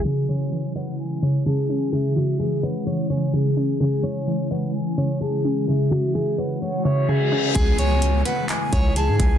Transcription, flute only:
\new Staff \with { instrumentName = "Flute" } { \time 4/4 \key cis \minor \tempo 4 = 128 gis''4. fis''8 gis''4 a''8 gis''8 | e''4. fis''4 gis''8 r4 | gis''4. fis''8 gis''4 a''8 gis''8 | e''4. fis''4 e''4. |
gis''4. fis''8 gis''4 a''8 gis''8 | }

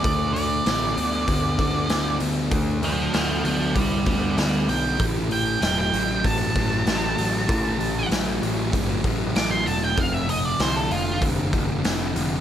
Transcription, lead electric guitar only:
\new Staff \with { instrumentName = "Lead electric guitar" } { \time 4/4 \key a \minor \tempo 4 = 96 d''8 d''2. r8 | r8 <f'' a''>8 <f'' a''>8 <f'' a''>8 <d'' g''>8 <d'' g''>8 <d'' g''>8 g''8 | r8 g''8 g''16 g''8. a''2~ | a''4 r2 d'''16 c'''16 a''16 g''16 |
f''16 e''16 dis''16 d''16 c''16 a'16 f'8 r2 | }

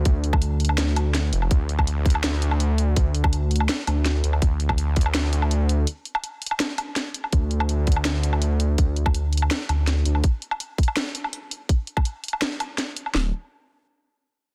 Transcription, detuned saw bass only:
\new Staff \with { instrumentName = "Detuned saw bass" } { \clef bass \time 4/4 \key d \minor \tempo 4 = 165 d,2 d,4. f,,8 | d,2 d,2 | d,2 r8 d,4 d,8 | d,2 d,2 |
r1 | d,2 d,2 | d,2 r8 d,4 d,8 | r1 |
r1 | d,,8 r2. r8 | }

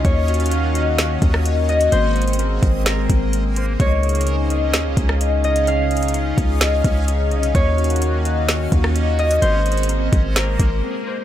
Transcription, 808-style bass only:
\new Staff \with { instrumentName = "808-style bass" } { \clef bass \time 4/4 \key des \major \tempo 4 = 128 ees,2~ ees,8 ees,4. | aes,,4. aes,,4 aes,,4. | des,2 ees,16 des,16 des,4.~ | des,4. des,4 des,4 c,8 |
ees,2~ ees,8 ees,4. | aes,,4. aes,,4 aes,,8 r4 | }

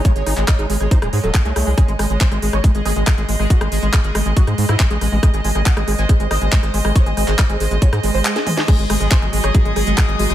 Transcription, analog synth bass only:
\new Staff \with { instrumentName = "Analog synth bass" } { \clef bass \time 4/4 \tempo 4 = 139 r16 gis,,16 gis,,16 gis,,16 r16 gis,,16 gis,,16 gis,,16 r16 dis,,16 gis,16 dis,,16 r16 bis,,16 bis,,16 bis,,16 | r16 gis,,16 gis,,16 gis,,16 r16 gis,,16 gis,,16 gis,,16 r16 gis,,16 gis,,16 gis,,16 r16 gis,,16 gis,,16 gis,,16 | r16 gis,,16 gis,,16 gis,,16 r16 gis,,16 gis,,16 gis,,16 r16 gis,16 gis,16 gis,16 r16 a,,16 a,,16 a,,16 | r16 gis,,16 gis,,16 gis,,16 r16 gis,,16 gis,,16 gis,,16 r16 gis,,16 gis,,16 gis,,16 r16 gis,,16 gis,,16 gis,,16 |
r16 gis,,16 gis,,16 gis,,16 r16 gis,,16 gis,,16 gis,,16 r16 gis,16 gis,,16 gis,,16 r4 | r16 gis,,16 gis,,16 gis,,16 r16 gis,,16 gis,,16 gis,,16 r16 gis,,16 gis,,16 gis,,16 r16 gis,,16 gis,,16 gis,,16 | }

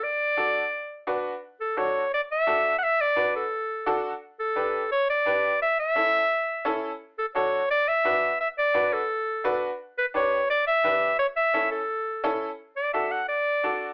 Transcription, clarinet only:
\new Staff \with { instrumentName = "Clarinet" } { \time 4/4 \key d \major \tempo 4 = 172 d''2. r4 | r8 a'8 cis''4 d''8 e''4~ e''16. fis''32 | e''8 d''4 a'2 r8 | r8 a'4. cis''8 d''4. |
e''8 e''2. r8 | r8 a'8 cis''4 d''8 e''4. | e''8 d''4 a'2 r8 | r8 b'8 cis''4 d''8 e''4. |
cis''8 e''4 a'2 r8 | r8 d''8 e''8 fis''8 d''2 | }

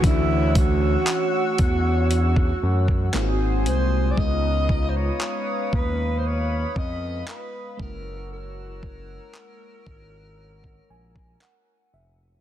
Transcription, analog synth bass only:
\new Staff \with { instrumentName = "Analog synth bass" } { \clef bass \time 4/4 \key fis \minor \tempo 4 = 58 d,4 r8 e,4 fis,8 gis,,8 bis,,8 | cis,4 r8 dis,4 eis,8 r8 fis,,8~ | fis,,4 r8 gis,,4 ais,,8 r8 eis,,8 | }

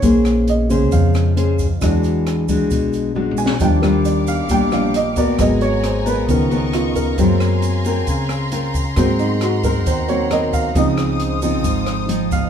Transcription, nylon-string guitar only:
\new Staff \with { instrumentName = "Nylon-string guitar" } { \time 4/4 \key aes \mixolydian \tempo 4 = 134 << { <des' aes' c''>4. <des' aes' c''>4. <des' aes' c''>8 r8 | <gis d' fis'>4. <gis d' fis'>4. <gis d' fis'>4 | <g d' f'>8 <g d' f'>4. <g d' f'>4 r8 <ces' ges' bes'>8~ | <ces' ges' bes'>4. <ces' f' bes'>4 <ces' f' bes'>4. |
<c' f' bes'>4 r8 <c' f' bes'>4. <c' f' bes'>8 r8 | <c' ges' bes'>4 r8 <c' ges' bes'>4. <c' ges' bes'>4 | <f c' ees'>4. <f c' ees'>4. <f c' ees'>4 | } \\ { bes2 f2 | e2 b,2 | ees2 bes,2 | aes2 des2 |
ges2 des2 | aes2 ees2 | des2 aes,2 | } >> }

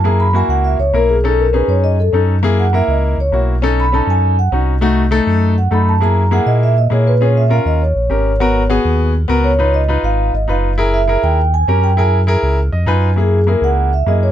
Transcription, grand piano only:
\new Staff \with { instrumentName = "Grand piano" } { \time 4/4 \key fis \mixolydian \tempo 4 = 201 << { r1 | r1 | r1 | r1 |
r1 | r1 | r1 | r1 |
r1 | r1 | r2 r8 dis''8 gis''4 | r1 | } \\ { <ais e' gis'>8 r8 <ais e' fis'>4. r8 <ais e' ais'>8 r8 | <cis' dis' a'>8 r8 <cis' dis' gis'>4. r8 <cis' dis' a'>8 r8 | <ais e' gis'>8 r8 <ais e' ais'>4. r8 <ais e' fis'>8 r8 | <cis' dis' a'>8 r8 <cis' dis' a'>4. r8 <cis' dis' fis'>8 r8 |
<a ees' ges'>8 r8 <a ees' a'>4. r8 <a ees' a'>8 r8 | <ais e' gis'>8 r8 <ais e' gis'>4. r8 <ais e' gis'>8 r8 | <cis' eis' gis'>8 r8 <cis' eis' ais'>4 r4 <cis' g' ais'>8 r8 | <b fis' ais'>8 r8 <b fis' gis'>4. r8 <b fis' ais'>8 r8 |
<dis' eis' b'>8 r8 <dis' eis' b'>4. r8 <dis' eis' b'>8 r8 | <e' gis' ais'>8 r8 <e' gis' ais'>4 r4 <cis' g' ais'>8 r8 | <e' gis' ais'>8 r8 <e' gis' ais'>4 r4 <dis' eis' b'>8 r8 | <ais e' gis'>8 r8 <ais e' gis'>4. r8 <ais e' gis'>8 r8 | } >> }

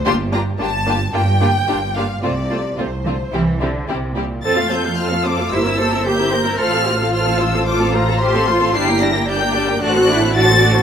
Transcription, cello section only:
\new Staff \with { instrumentName = "Cello section" } { \time 4/4 \key f \major \tempo 4 = 112 g,4 g,4 g,4 g,4 | c4 c8 d8 e8 d8 c8 bes,8 | r2 e'8 a'8 g'8 bes'8 | a'8 f'4. f'4 g'8 f'8 |
e'4 d'4 fis'8 e'8 fis'4 | }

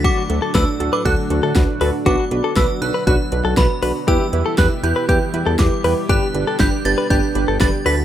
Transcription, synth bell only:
\new Staff \with { instrumentName = "Synth bell" } { \time 4/4 \key g \lydian \tempo 4 = 119 d'''4 e'''8. d'''16 fis'''4. r8 | d'''4 e'''8 fis'''8 fis'''4 b''8. r16 | e'''4 fis'''8 g'''8 g'''4 d'''8. r16 | fis'''4 g'''8 a'''8 g'''4 a'''8 b'''8 | }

